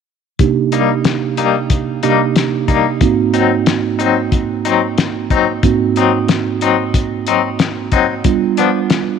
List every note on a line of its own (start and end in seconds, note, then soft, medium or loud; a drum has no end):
0.39 2.01 C3 medium
0.39 2.00 A#3 soft
0.39 2.00 D4 soft
0.39 2.00 D#4 medium
0.39 2.00 G4 medium
0.39 kick loud
0.39 closed hi-hat medium
0.72 0.94 G3 soft
0.72 0.94 A#3 medium
0.72 0.93 D#4 medium
0.72 closed hi-hat soft
1.05 snare medium
1.05 closed hi-hat medium
1.37 1.60 G3 medium
1.37 1.59 A#3 medium
1.37 1.59 D#4 medium
1.37 closed hi-hat medium
1.70 kick medium
1.70 closed hi-hat medium
2.03 3.02 C3 soft
2.03 2.25 G3 medium
2.03 3.01 A#3 soft
2.03 2.25 A#3 medium
2.03 3.02 D4 soft
2.03 2.24 D#4 medium
2.03 3.01 D#4 soft
2.03 3.02 G4 medium
2.03 closed hi-hat medium
2.36 snare medium
2.36 closed hi-hat medium
2.68 2.90 G3 medium
2.68 2.90 A#3 medium
2.68 2.89 D#4 medium
2.68 kick medium
2.68 closed hi-hat medium
3.01 5.59 G#2 medium
3.01 5.60 A#3 medium
3.01 5.59 C4 medium
3.01 5.60 D#4 medium
3.01 5.60 F#4 medium
3.01 kick medium
3.01 closed hi-hat medium
3.34 3.55 F#3 soft
3.34 3.55 C4 soft
3.34 3.55 D#4 medium
3.34 closed hi-hat medium
3.66 snare medium
3.66 closed hi-hat medium
3.99 4.21 F#3 medium
3.99 4.21 C4 medium
3.99 4.20 D#4 medium
3.99 closed hi-hat soft
4.32 kick medium
4.32 closed hi-hat medium
4.65 4.87 F#3 medium
4.65 4.86 C4 medium
4.65 4.86 D#4 medium
4.65 closed hi-hat soft
4.98 snare medium
4.98 closed hi-hat medium
5.30 5.52 F#3 medium
5.30 5.52 C4 medium
5.30 5.51 D#4 medium
5.30 kick medium
5.30 closed hi-hat soft
5.63 8.22 G#2 medium
5.63 8.22 A#3 soft
5.63 8.22 C4 medium
5.63 8.22 D#4 medium
5.63 8.22 F#4 medium
5.63 kick loud
5.63 closed hi-hat medium
5.96 6.18 F#3 medium
5.96 6.18 C4 medium
5.96 6.17 D#4 medium
5.96 closed hi-hat soft
6.28 snare loud
6.28 closed hi-hat medium
6.61 6.84 F#3 medium
6.61 6.83 C4 medium
6.61 6.83 D#4 medium
6.61 closed hi-hat medium
6.94 kick medium
6.94 closed hi-hat medium
7.27 7.49 F#3 soft
7.27 7.48 C4 medium
7.27 7.48 D#4 medium
7.27 closed hi-hat medium
7.59 snare medium
7.59 closed hi-hat medium
7.92 8.14 F#3 medium
7.92 8.14 C4 medium
7.92 8.13 D#4 medium
7.92 kick medium
7.92 closed hi-hat medium
8.24 9.19 G3 medium
8.24 9.19 B3 soft
8.24 9.19 D4 medium
8.24 9.19 F4 medium
8.24 kick loud
8.24 closed hi-hat medium
8.57 8.80 F3 soft
8.57 8.79 B3 medium
8.57 8.79 D4 medium
8.57 closed hi-hat medium
8.90 snare medium
8.90 closed hi-hat medium